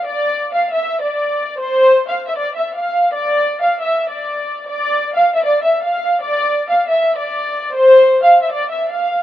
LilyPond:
\new Staff \with { instrumentName = "Violin section" } { \time 4/4 \key d \minor \tempo 4 = 156 d''4~ d''16 f''8 e''8. d''4. | c''4~ c''16 f''8 e''16 d''8 e''8 f''4 | d''4~ d''16 f''8 e''8. d''4. | d''4~ d''16 f''8 e''16 d''8 e''8 f''4 |
d''4~ d''16 f''8 e''8. d''4. | c''4~ c''16 f''8 e''16 d''8 e''8 f''4 | }